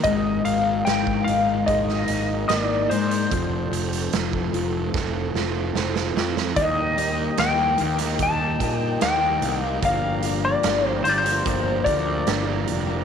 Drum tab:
HH |x-x-x-x-x-x-x-xx|x-xxx-x---------|x-x-x-xxx-x-x-x-|x-x-x-xxx-x-x-x-|
SD |----o----o--o---|----o---o-o-oooo|----o--o----o---|----o-------o---|
BD |o----o--o-------|o----o--o-------|o-------o-o-----|o-------o-o-----|